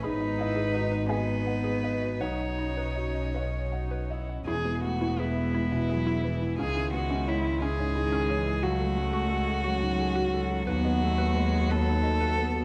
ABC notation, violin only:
X:1
M:6/8
L:1/8
Q:3/8=58
K:Bmix
V:1 name="Violin"
B3 B3 | c4- c z | G F E4 | G F E G3 |
F6 | F3 A3 |]